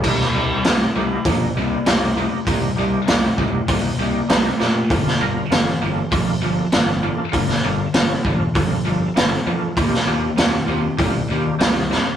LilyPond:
<<
  \new Staff \with { instrumentName = "Tonewheel organ" } { \time 4/4 \key g \minor \tempo 4 = 99 <bes d' ees' g'>8 <bes d' ees' g'>8 <bes d' ees' g'>8 <bes d' ees' g'>8 <bes d' ees' g'>8 <bes d' ees' g'>8 <bes d' ees' g'>8 <bes d' ees' g'>8 | <bes d' ees' g'>8 <bes d' ees' g'>8 <bes d' ees' g'>8 <bes d' ees' g'>8 <bes d' ees' g'>8 <bes d' ees' g'>8 <bes d' ees' g'>8 <bes d' ees' g'>8 | <bes d' f' a'>8 <bes d' f' bes'>8 <bes d' f' a'>8 <bes d' f' a'>8 <bes d' f' a'>8 <bes d' f' a'>8 <bes d' f' a'>8 <bes d' f' a'>8 | <bes d' f' a'>8 <bes d' f' a'>8 <bes d' f' a'>8 <bes d' f' a'>8 <bes d' f' a'>8 <bes d' f' a'>8 <bes d' f' a'>8 <bes d' f' a'>8 |
<bes d' f' g'>8 <bes d' f' g'>8 <bes d' f' g'>8 <bes d' f' g'>8 <bes d' f' g'>8 <bes d' f' g'>8 <bes d' f' g'>8 <bes d' f' g'>8 | }
  \new Staff \with { instrumentName = "Distorted electric guitar" } { \clef bass \time 4/4 \key g \minor <c g>8 <c g>8 <c a>8 <c a>8 <c bes>8 <c bes>8 <c a>8 <c a>8 | <c g>8 <c g>8 <c a>8 <c a>8 <c bes>8 <c bes>8 <c a>8 <c a>8 | <g, d>8 <g, d>8 <g, e>8 <g, e>8 <g, f>8 <g, f>8 <g, e>8 <g, e>8 | <g, d>8 <g, d>8 <g, e>8 <g, e>8 <g, f>8 <g, f>8 <g, e>8 <g, e>8 |
<ees bes>8 <ees bes>8 <ees c'>8 <ees c'>8 <ees cis'>8 <ees cis'>8 <ees c'>8 <ees c'>8 | }
  \new Staff \with { instrumentName = "Fingered electric bass" } { \clef bass \time 4/4 \key g \minor c,8 c,8 c,8 c,8 bes,,8 c,8 c,4 | c,8 c,8 c,8 c,8 c,8 c,8 c,8 bes,8 | g,,8 g,,8 g,,8 g,,8 f,,8 g,,8 g,,4 | g,,8 g,,8 g,,8 g,,8 g,,8 g,,8 g,,8 f,8 |
ees,8 ees,8 ees,8 ees,8 c,8 ees,8 c,4 | }
  \new DrumStaff \with { instrumentName = "Drums" } \drummode { \time 4/4 <cymc hho bd>16 sn8. <hho sn>4 <hho bd>4 <hho sn>4 | <hho bd>4 <hho sn>8 bd8 <hho bd>4 <hho sn>8 sn8 | <hho bd>16 sn8. <hho sn>4 <hho bd>4 <hho sn>4 | <hho bd>16 sn8. <hho sn>8 bd8 <hho bd>4 <hho sn>4 |
<hho bd>16 sn8. <hho sn>4 <hho bd>4 <hho sn>8 sn8 | }
>>